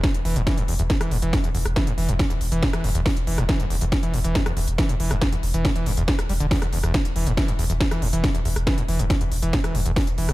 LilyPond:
<<
  \new Staff \with { instrumentName = "Acid bass" } { \clef bass \time 4/4 \key e \minor \tempo 4 = 139 e,16 r16 e16 g,16 e16 e,16 e,16 e,16 r16 e16 g,16 e16 e,16 e,16 e,16 r16 | e16 g,16 e16 e,16 e,16 e,16 r16 e16 g,16 e16 e,16 e,16 e,16 r16 e16 g,16 | e16 e,16 e,16 e,16 r16 e16 g,16 e16 e,16 e,16 e,16 r16 e16 g,16 e16 e,16 | e,16 e,16 r16 e16 g,16 e16 e,16 e,16 e,16 r16 g16 d16 e,16 e,16 e,16 e,16 |
e,16 r16 e16 g,16 e16 e,16 e,16 e,16 r16 e16 g,16 e16 e,16 e,16 e,16 r16 | e16 g,16 e16 e,16 e,16 e,16 r16 e16 g,16 e16 e,16 e,16 e,16 r16 e16 g,16 | }
  \new Staff \with { instrumentName = "Sub bass" } { \clef bass \time 4/4 \key e \minor r16 e,,16 e,,16 e,,16 r16 e,,16 e,,16 e,,16 r16 e,,16 e,,16 e,,16 r16 e,,16 e,,16 e,,16 | r16 e,,16 e,,16 e,,16 r16 e,,16 e,,16 e,,16 r16 e,,16 e,,16 e,,16 r16 e,,16 e,,16 e,,16 | r16 e,,16 e,,16 e,,16 r16 e,,16 e,,16 e,,16 r16 e,,16 e,,16 e,,16 r16 e,,16 e,,16 e,,16 | r16 e,,16 e,,16 e,,16 r16 e,,16 e,,16 e,,16 r16 e,,16 e,,16 e,,16 r16 e,,16 e,,16 e,,16 |
r16 e,,16 e,,16 e,,16 r16 e,,16 e,,16 e,,16 r16 e,,16 e,,16 e,,16 r16 e,,16 e,,16 e,,16 | r16 e,,16 e,,16 e,,16 r16 e,,16 e,,16 e,,16 r16 e,,16 e,,16 e,,16 r16 e,,16 e,,16 e,,16 | }
  \new DrumStaff \with { instrumentName = "Drums" } \drummode { \time 4/4 <hh bd sn>16 hh16 hho16 hh16 <hh bd sn>16 hh16 hho16 hh16 <hh bd sn>16 <hh ss>16 hho16 hh16 <hh bd sn>16 hh16 hho16 <hh ss>16 | <hh bd sn>16 hh16 hho16 hh16 <hh bd sn>16 hh16 hho16 hh16 <hh bd sn>16 <hh ss>16 hho16 hh16 <hho bd sn>16 hh16 hho16 <hh ss>16 | <hh bd sn>16 hh16 hho16 hh16 <hh bd sn>16 hh16 hho16 hh16 <hh bd sn>16 <hh ss>16 hho16 hh16 <hh bd sn>16 hh16 hho16 <hh ss>16 | <hh bd sn>16 hh16 hho16 hh16 <hh bd sn>16 hh16 hho16 hh16 <hh bd sn>16 <hh ss>16 hho16 hh16 <hho bd sn>16 <hh ss>16 hho16 <hh ss>16 |
<hh bd sn>16 hh16 hho16 hh16 <hh bd sn>16 hh16 hho16 hh16 <hh bd sn>16 <hh ss>16 hho16 hh16 <hh bd sn>16 hh16 hho16 <hh ss>16 | <hh bd sn>16 hh16 hho16 hh16 <hh bd sn>16 hh16 hho16 hh16 <hh bd sn>16 <hh ss>16 hho16 hh16 <hho bd sn>16 hh16 hho16 <hh ss>16 | }
>>